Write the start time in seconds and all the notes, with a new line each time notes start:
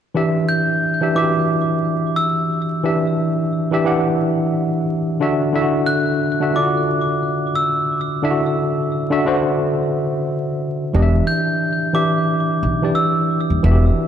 0.14 E3 D4 G4 E5
0.49 G6
1.01 E3 D4 G4 E5
1.15 E3 D4 F#4 E5 D6
1.24 G4
2.16 E6
2.83 E3 D4 G4 E5
3.71 E3 D4 G4 E5
3.84 E3 D4 G4 F#5
5.20 D3 D4 F#4 E5
5.53 D3 D4 E4 E5
5.61 F#4
5.86 F#6
6.40 D3 D4 F#4 E5
6.54 D3 D4 F4 D5 D6
6.62 F#4
7.55 E6
8.22 D3 D4 E4 E5
8.31 F#4
9.10 D3 D4 F#4 E5
9.25 D3 D4 F#4 C5
10.93 E1 E3 D4 G4 D#5
11.02 E5
11.27 G6
11.93 E3 D4 G4 E5 D6
12.63 B1
12.82 E3 D4 G4 D5
12.95 E6
13.50 D#1
13.63 E1 E3 D4 F#4 E5
13.71 G4